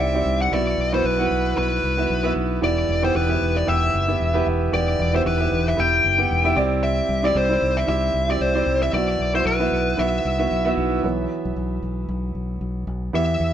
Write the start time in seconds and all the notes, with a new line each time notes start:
Already playing: C3 C4 E4 G4 B4 D5
0.00 C2 E5
0.14 C4 E4 G4 D5
0.26 C2
0.41 F#5
0.52 B1 B2 B3 E4 F#4 D5 E5
0.78 B1
0.92 B3 E4 F#4 B4 C5
1.04 B1 B4
1.18 B3 E4 F#4 F#5
1.31 B1
1.56 B1 B3 E4 F#4 B4
1.84 C2
1.97 B3 E4 F#4 E5
2.10 B1
2.23 B3 E4 F#4 E5
2.36 B1
2.61 E1 E3 B3 E4 G4 D5 E5
2.89 E1
3.02 B3 E4 G4 C5 G5
3.15 E1 B4
3.29 B3 E4 G4 E5
3.41 E1
3.57 D5
3.67 E1 B3 E4 G4 E5 G5
3.94 F#1
4.08 B3 E4 G4 E5
4.20 E1
4.34 B3 E4 G4 B4
4.47 E1
4.72 E1 E3 B3 E4 G4 D5 G5
4.99 E1
5.14 B3 E4 G4 C5 E5
5.25 E1 B4
5.40 B3 E4 G4 E5
5.52 E1
5.68 E5
5.77 E1 B3 E4 G4 E5 G5
6.04 F#1
6.18 B3 E4 G4 F#5
6.31 E1
6.44 B3 E4 G4 E5
6.56 C2 C3 C4 E4 G4 D5
6.83 E5
7.09 C2
7.23 C4 E4 G4 D5
7.35 C2 C5
7.49 C4 E4 G4 D5
7.62 C2
7.77 E5
7.87 C2 C4 E4 G4 E5
8.14 C2
8.28 C4 E4 G4 D5
8.40 C2 C5
8.54 C4 E4 G4 D5
8.66 C2
8.83 E5
8.93 B1 B2 B3 E4 F#4 D5 E5
9.19 B1
9.34 B3 E4 F#4 C5 E5
9.45 B1 B4
9.60 B3 E4 F#4 E5
9.72 B1
9.97 B1 B3 E4 F#4 E5
10.25 C2
10.39 B3 E4 F#4 E5
10.51 B1
10.65 B3 E4 F#4 E5
10.77 B1
11.03 B1 E3 F#3 B3
11.45 B1
11.56 B1
11.83 B1
12.09 B1
12.35 B1
12.61 B1
12.87 B1
13.13 E2 E3 B3 E4 G4 E5
13.40 E2